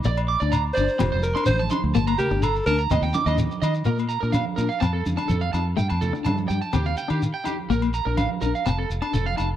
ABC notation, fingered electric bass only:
X:1
M:4/4
L:1/16
Q:1/4=125
K:Bb
V:1 name="Fingered electric bass" clef=bass
B,,,3 D,,3 G,,, z F,,, F,,,2 z A,,,2 z D,, | G,,,2 z G,,,3 D,,2 E,, E,, z E,,2 z E,2 | B,,3 B,,2 z B,, z F,,2 F,, z F,,2 F,,2 | G,, F,,2 z G,,2 G,, z E,,2 z E,2 z3 |
B,,,3 B,,,2 z B,,, z F,,,2 F,,, z F,,,2 F,,,2 |]